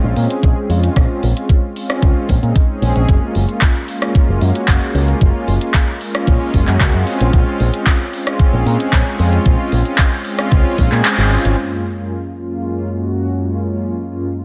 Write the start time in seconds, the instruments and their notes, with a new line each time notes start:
Already playing: analog synth pad G#3 C4 C#4 F4
0.04 picked electric bass A#1
0.16 picked electric bass A#2, analog synth pad G#3 C4 C#4 G#4, open hi-hat
0.30 closed hi-hat
0.43 picked electric bass A#1, kick, closed hi-hat
0.57 analog synth pad G#3 C4 C#4 F4
0.69 picked electric bass F2, open hi-hat
0.84 closed hi-hat
0.96 picked electric bass A#1, analog synth pad G#3 C4 C#4 F4, kick, cross-stick, closed hi-hat
1.23 picked electric bass A#1, open hi-hat
1.37 analog synth pad G#3 C4 C#4 F4, closed hi-hat
1.49 kick, closed hi-hat
1.76 analog synth pad G#3 C4 C#4 F4, open hi-hat
1.90 cross-stick, closed hi-hat
2.02 picked electric bass C#2, kick, closed hi-hat
2.29 picked electric bass A#1, kick, open hi-hat
2.43 picked electric bass A#2, analog synth pad G#3 C4 C#4 D#4, closed hi-hat
2.56 kick, closed hi-hat
2.69 analog synth pad G#3 C4 C#4 G#4
2.82 picked electric bass A#1, open hi-hat
2.96 picked electric bass A#1, closed hi-hat
3.08 picked electric bass F#1, analog synth pad G#3 A#3 C#4 F4, kick, closed hi-hat
3.35 picked electric bass F#1, open hi-hat
3.49 analog synth pad G#3 A#3 C#4 F4, closed hi-hat
3.61 kick, clap, closed hi-hat
3.88 analog synth pad G#3 A#3 C#4 F4, open hi-hat
4.02 cross-stick, closed hi-hat
4.15 muted picked electric bass stroke, kick, closed hi-hat
4.28 picked electric bass F#1
4.41 picked electric bass F#2, analog synth pad G#3 A#3 C#4 F#4, open hi-hat
4.55 closed hi-hat
4.68 picked electric bass F#1, kick, clap, closed hi-hat
4.82 analog synth pad G#3 A#3 C#4 F4
4.94 picked electric bass C#2, open hi-hat
5.08 closed hi-hat
5.21 picked electric bass F#1, analog synth pad G#3 A#3 C#4 F4, kick, closed hi-hat
5.48 picked electric bass F#1, open hi-hat
5.61 analog synth pad G#3 A#3 C#4 F4, closed hi-hat
5.74 kick, clap, closed hi-hat
6.01 analog synth pad G#3 A#3 C#4 F4, open hi-hat
6.15 cross-stick, closed hi-hat
6.27 picked electric bass A#1, kick, closed hi-hat
6.54 picked electric bass F#1, analog synth pad G#3 A#3 C#4 F#4, kick, open hi-hat
6.67 picked electric bass F#2, clap, closed hi-hat
6.80 picked electric bass C#2, kick, clap, closed hi-hat
6.94 picked electric bass F#2, analog synth pad G#3 C4 C#4 F4
7.07 open hi-hat
7.21 picked electric bass A#1, closed hi-hat
7.33 analog synth pad G#3 C4 C#4 F4, kick, closed hi-hat
7.60 picked electric bass A#1, open hi-hat
7.74 analog synth pad G#3 C4 C#4 F4, closed hi-hat
7.86 kick, clap, closed hi-hat
8.13 analog synth pad G#3 C4 C#4 F4, open hi-hat
8.27 cross-stick, closed hi-hat
8.39 muted picked electric bass stroke, kick, closed hi-hat
8.53 picked electric bass A#1
8.66 picked electric bass A#2, analog synth pad G#3 C4 C#4 G#4, open hi-hat
8.80 closed hi-hat
8.93 picked electric bass A#1, kick, clap, closed hi-hat
9.06 analog synth pad G#3 C4 C#4 F4
9.19 picked electric bass F2, open hi-hat
9.33 closed hi-hat
9.45 picked electric bass A#1, analog synth pad G#3 C4 C#4 F4, kick, closed hi-hat
9.72 picked electric bass A#1, open hi-hat
9.85 analog synth pad G#3 C4 C#4 F4, closed hi-hat
9.98 kick, clap, closed hi-hat
10.25 analog synth pad G#3 C4 C#4 F4, open hi-hat
10.39 cross-stick, closed hi-hat
10.52 picked electric bass C#2, kick, closed hi-hat
10.78 picked electric bass A#1, analog synth pad G#3 C4 C#4 G#4, kick, open hi-hat
10.92 picked electric bass A#2, clap, closed hi-hat
11.05 clap, closed hi-hat
11.18 picked electric bass G#1, analog synth pad G#3 C4 C#4 F4
11.32 open hi-hat
11.45 picked electric bass G#1, closed hi-hat
11.58 analog synth pad F#2 G#3 A#3 C#4 F4
11.98 analog synth pad F#2 G#3 A#3 C#4 F4
12.37 analog synth pad F#2 G#3 A#3 C#4 F4
12.90 analog synth pad F#2 G#3 A#3 C#4 F#4
13.31 analog synth pad F#2 G#3 A#3 C#4 F4
13.70 analog synth pad F#2 G#3 A#3 C#4 F4
14.10 analog synth pad F#2 G#3 A#3 C#4 F4